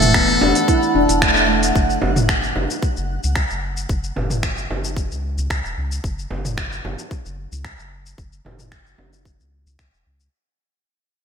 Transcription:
Already playing: E1 A3 A4 F#5
0.02 mid tom, open hi-hat, shaker
0.14 B3, finger snap, kick, open hi-hat, shaker
0.28 B3, shaker
0.41 E1 D4, frame drum
0.55 open hi-hat, shaker
0.68 E4, kick, open hi-hat, shaker
0.83 shaker
0.95 E1 D4
1.09 E1, open hi-hat, shaker
1.22 A3, finger snap, kick, open hi-hat, shaker
1.37 shaker
1.48 A3
1.63 open hi-hat, shaker
1.75 F#1, kick, shaker
1.90 shaker
2.02 F#1, frame drum
2.16 mid tom, shaker
2.29 finger snap, kick, shaker
2.43 shaker
2.56 F#1, frame drum
2.70 shaker
2.83 kick, shaker
2.97 F#1, shaker
3.24 C#2, shaker
3.36 finger snap, kick, shaker
3.50 F#1, shaker
3.77 shaker
3.89 F#1, kick, shaker
4.04 shaker
4.16 F#1, mid tom, frame drum
4.30 mid tom, shaker
4.43 finger snap, kick, shaker
4.58 shaker
4.70 F#1, frame drum
4.85 shaker
4.96 kick, shaker
5.11 C#2, shaker
5.38 C#2, shaker
5.50 C#2, finger snap, kick, shaker
5.65 E1, shaker
5.77 C#2
5.92 shaker
6.04 F#1, kick, shaker
6.19 shaker
6.30 F#1, frame drum
6.45 mid tom, shaker
6.58 finger snap, kick, shaker
6.72 shaker
6.84 F#1, frame drum
6.99 shaker
7.11 kick, shaker
7.25 F#1, shaker
7.52 C#2, shaker
7.65 finger snap, kick, shaker
7.79 F#1, shaker
8.06 shaker
8.18 F#1, kick, shaker
8.32 shaker
8.45 F#1, mid tom, frame drum
8.59 mid tom, shaker
8.72 finger snap, kick, shaker
8.87 shaker
8.98 F#1, frame drum
9.13 shaker
9.25 kick, shaker
9.40 C#2, shaker
9.66 C#2, shaker
9.79 C#2, finger snap, kick, shaker
9.94 E1, shaker
10.06 C#2
10.20 shaker

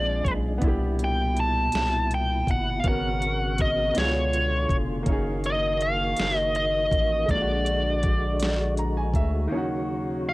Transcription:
Already playing: A#1 A#2 G#3 C4 D4 F4 G#4 D5
0.25 B1, kick, closed hi-hat
0.58 B3 D4, kick, closed hi-hat
0.62 C2 B2 E4
0.68 G4
0.99 closed hi-hat
1.04 G5
1.37 A5, closed hi-hat
1.72 C2, snare, closed hi-hat
2.11 G5, closed hi-hat
2.47 G1 F#5, kick, closed hi-hat
2.80 F5
2.84 G#1 C#3 B3 C#4 F#4 A#4 F#5, kick, closed hi-hat
2.88 A#4
3.22 closed hi-hat
3.58 D#5, kick, closed hi-hat
3.94 C#2 D3 B3 D4 F4, closed hi-hat
3.98 G#4 C#5, snare
4.33 closed hi-hat
4.69 F1, kick, closed hi-hat
5.03 A#3 C#4, kick, closed hi-hat
5.07 F#1 D#3 A#3 D#4 F#4
5.12 G#4
5.44 D#5, closed hi-hat
5.81 F5, closed hi-hat
6.17 F#1, snare, closed hi-hat
6.38 D#5
6.55 D#5, closed hi-hat
6.91 A1, kick, closed hi-hat
7.26 A#1 D3 G#3 A#3, kick, closed hi-hat
7.31 D4 D5
7.35 F4
7.42 F#4
7.66 closed hi-hat
8.03 kick, closed hi-hat
8.40 snare, closed hi-hat
8.77 A#5, closed hi-hat
8.97 G#5
9.14 D2 E5, kick, closed hi-hat
9.48 C#3 D#3 F#3 A#3
9.52 D#2 C#4 D#4 F#4
9.57 F#4
10.29 F5

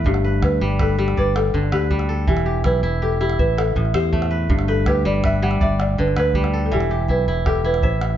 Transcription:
Already playing: A2 A3 E4 B4 C5
0.04 G1 G2 G4, calabash thump
0.14 calabash click
0.24 B4
0.42 D2 B4, calabash thump, calabash click
0.61 G1 G3
0.79 A4 B4, calabash thump, calabash click
0.99 G3 G4
1.08 calabash click
1.17 G1 B4 D5, calabash thump
1.36 A4, calabash click
1.54 G1 D3, calabash thump, calabash click
1.63 calabash click
1.72 D2 G4 B4, calabash click
1.91 G3, calabash thump
1.99 calabash click
2.09 A4
2.27 E1 E3 G4, calabash thump
2.37 calabash click
2.46 G4
2.64 B1 E4 B4, calabash thump, calabash click
2.83 E1 E4
3.02 G4 A4
3.21 E4 G4
3.30 calabash click
3.39 A1 B4 E5, calabash thump
3.58 A4, calabash click
3.76 A1 A2, calabash thump, calabash click
3.85 calabash click
3.94 E2 G4 C5, calabash click
4.13 A3, calabash thump
4.22 calabash click
4.31 B4
4.49 G1 G2, calabash thump
4.59 calabash click
4.68 A4 B4
4.86 D2 G4 B4, calabash thump, calabash click
5.05 G1 G3 D5
5.24 B4 E5, calabash thump, calabash click
5.42 G3 F#5
5.51 calabash click
5.61 G1 D5 E5, calabash thump
5.80 D5, calabash click
5.98 G1 D3 B4, calabash thump, calabash click
6.08 calabash click
6.16 D2 B4, calabash click
6.34 G3, calabash thump
6.44 calabash click
6.54 A4
6.66 A4
6.72 E1 E3 G4, calabash thump, calabash click
6.80 calabash click
6.90 G4, calabash click
7.08 B1 E4 B4, calabash thump
7.28 E1 E4
7.46 G4 A4, calabash thump, calabash click
7.56 calabash click
7.64 E4 B4, calabash click
7.74 calabash click
7.82 A1 C5 E5, calabash thump
8.01 calabash click

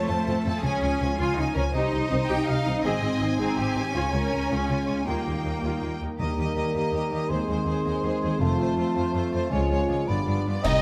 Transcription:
Already playing: F3 A3 C4 C5
0.07 F2 C4 F4 C5 A5
0.26 F2 C4 F4 C5 A5
0.43 F2 A3 C4 F4 A4 A5
0.48 C4
0.61 C#2 C#3 C#4 G#4 G#5
0.66 C#4 F4
0.82 C#2 C#4 F4 G#5
0.99 C#2 F3 C#4 F4 F5 G#5
1.19 C#2 C#4 F4 C#5 G#5
1.37 C#2 C#4 D#4 F4 F5 G#5
1.54 C#2 F3 C#4 F4 A#4 G#5
1.72 C2 C3 D#4 G4 C5 D#5
1.92 C2 D#4 G4
2.09 C2 D#3 C4 D#4 C5
2.28 C2 D#4 G4 G5
2.47 C2 D#4 G4 D#5 F5
2.65 C2 D#3 C4 D#4 C5
2.83 G#1 G#2 C4 G#4 D#5 G#5
3.02 G#1 C4 D#4 G#4
3.19 G#1 D#3 C4 D#4 C5
3.39 G#1 C4 D#4 G#4 C6
3.57 G#1 C4 G4 G#4 D#5
3.75 G#1 D#3 C4 D#4 C5
3.94 C#2 C#3 G#3 C#4 F4
4.13 C#2 C#4 F4 A#4
4.31 C#2 C#4 C#5
4.48 C#2 G#3 C#4 F4 G#4 G#5
4.69 C#2 C#4 F4 C#5
4.87 C#2 C#4 G#4
5.05 D#2 D#3 G3 A#3 D#4 F4 G5
5.26 D#2 A#3 F4
5.44 D#2 A#3 D#4 A#4
5.63 D#2 A#3 F4 G5
5.82 D#2 A#3 F4 F5
6.00 D#2 A#3 D#4 A#4
6.18 D#2 D#3 G3 A#3 G4 A#4 D#5 A#5
6.37 D#2 A#3 D#4 G4 D#5
6.55 D#2 A#3 G4 A#4 D#5
6.73 D#2 A#3 G4 D#5
6.92 D#2 A#3 G4 A#4 D#5
7.11 D#2 A#3 G4 D#5
7.29 D#2 D#3 G#3 C4 G#4 C5 C6
7.48 D#2 G#3 D#4 G#4 C5
7.66 D#2 G#3 G#4 C5
7.85 D#2 G#3 G#4 C5 D#5
8.03 D#2 G#3 G#4 C5
8.22 D#2 G#3 G#4 C5
8.40 F1 F2 F3 A3 F4 C5 A5
8.58 F2 A3 F4 C5
8.77 F2 A3 F4 C5
8.96 F2 A3 F4 C5 F5
9.14 F2 A3 F4 C5
9.32 F2 A3 F4 A4 C5
9.50 C#2 C#3 G#3 C#4 F4 C#5 G#5
9.69 C#2 G#3 C#4 F4 C#5
9.87 C#2 G#3 F4 G#4 C#5
10.07 G1 G2 G3 B3 D4 F4 D5 B5
10.26 G2 B3 D4 F4 D5
10.46 G2 B3 F4 B4 D5
10.63 C2 C3 G3 C4 D#4 G4 D#5, concert bass drum, crash
10.75 G3

